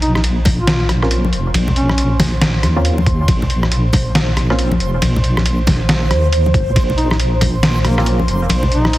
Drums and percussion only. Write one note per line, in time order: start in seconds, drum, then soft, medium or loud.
0.02 closed hi-hat medium
0.15 cross-stick medium
0.15 high conga medium
0.24 closed hi-hat medium
0.24 ride soft
0.45 kick medium
0.45 open hi-hat loud
0.45 high conga loud
0.45 low conga loud
0.67 snare loud
0.67 closed hi-hat medium
0.67 ride medium
0.89 cross-stick medium
0.89 closed hi-hat medium
0.89 high conga medium
1.02 cross-stick medium
1.11 closed hi-hat medium
1.11 ride soft
1.25 high conga medium
1.33 closed hi-hat medium
1.54 closed hi-hat medium
1.54 ride medium
1.54 high conga medium
1.68 low conga medium
1.76 closed hi-hat medium
1.89 cross-stick medium
1.89 high conga medium
1.98 closed hi-hat medium
1.98 ride soft
2.20 snare medium
2.20 open hi-hat loud
2.20 high conga loud
2.20 low conga medium
2.41 snare loud
2.41 closed hi-hat medium
2.41 ride medium
2.63 cross-stick medium
2.63 closed hi-hat medium
2.63 high conga medium
2.85 closed hi-hat medium
2.85 ride soft
2.98 high conga loud
3.06 kick loud
3.06 closed hi-hat medium
3.28 kick loud
3.28 closed hi-hat medium
3.28 ride medium
3.28 high conga loud
3.42 low conga medium
3.50 closed hi-hat medium
3.63 cross-stick medium
3.63 high conga medium
3.72 closed hi-hat medium
3.72 ride soft
3.93 kick medium
3.93 open hi-hat loud
3.93 high conga loud
3.93 low conga medium
4.15 snare loud
4.15 closed hi-hat medium
4.15 ride medium
4.37 cross-stick medium
4.37 closed hi-hat medium
4.37 high conga medium
4.50 cross-stick medium
4.59 closed hi-hat medium
4.59 ride soft
4.71 high conga loud
4.80 closed hi-hat medium
5.02 closed hi-hat medium
5.02 ride medium
5.02 high conga loud
5.16 low conga medium
5.24 closed hi-hat medium
5.37 cross-stick medium
5.37 high conga medium
5.46 closed hi-hat medium
5.46 ride soft
5.67 kick medium
5.67 snare medium
5.67 open hi-hat medium
5.67 high conga loud
5.67 low conga medium
5.89 snare loud
5.89 closed hi-hat medium
5.89 ride medium
6.11 cross-stick medium
6.11 closed hi-hat soft
6.11 high conga medium
6.33 closed hi-hat medium
6.33 ride soft
6.46 high conga loud
6.54 kick loud
6.54 closed hi-hat medium
6.76 kick loud
6.76 closed hi-hat medium
6.76 ride medium
6.76 high conga medium
6.90 low conga medium
6.98 closed hi-hat medium
7.11 cross-stick medium
7.11 high conga medium
7.20 closed hi-hat medium
7.20 ride soft
7.41 kick medium
7.41 open hi-hat loud
7.41 high conga medium
7.41 low conga medium
7.63 snare loud
7.63 closed hi-hat medium
7.63 ride medium
7.85 cross-stick medium
7.85 closed hi-hat medium
7.85 high conga medium
7.98 cross-stick medium
8.06 closed hi-hat medium
8.06 ride soft
8.19 high conga medium
8.28 closed hi-hat medium
8.49 closed hi-hat medium
8.49 ride medium
8.49 high conga medium
8.63 low conga medium
8.72 closed hi-hat medium
8.85 cross-stick medium
8.85 high conga medium
8.93 closed hi-hat medium
8.93 ride soft